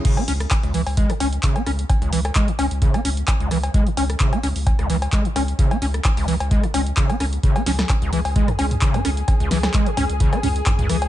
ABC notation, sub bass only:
X:1
M:4/4
L:1/16
Q:"Swing 16ths" 1/4=130
K:C#m
V:1 name="Sub bass" clef=bass
z2 C,,2 z2 C,, C,,2 z C,,2 z2 C,,2 | z2 C,,2 z2 C,, C,,2 z C,,2 z2 C,,2 | z2 C,,2 z2 C,, C,,2 z C,,2 z2 C,,2 | z2 C,,2 z2 C,, C,,2 z C,,2 z2 C,,2 |
z2 C,,2 z2 C,, C,,2 z C,,2 z2 C,,2 | z2 C,,2 z2 C,, C,,2 z C,,2 z2 C,,2 |]